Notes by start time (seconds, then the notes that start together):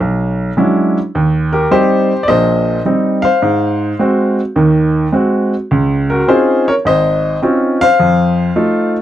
0.00 B1
0.57 F#3 G#3 C#4 D4 E4
1.15 D#2
1.53 G4 A#4
1.71 G3 C4 D#4 G4 C5
2.23 D5
2.28 A#1 A#2 C5 D#5
2.85 G3 C4 D#4
3.22 C5 F5
3.42 G#2
3.99 G#3 C4 F#4
4.56 D#2 D#3
5.13 G#3 C4 F#4
5.71 C#2
6.10 F#4 A#4
6.28 C4 C#4 D#4 F4 G#4 C5
6.68 A#4 C#5
6.85 G#1 C5 D#5
7.43 C4 C#4 D#4 F4
7.81 C5 F5
8.00 F2
8.56 A3 D#4 F4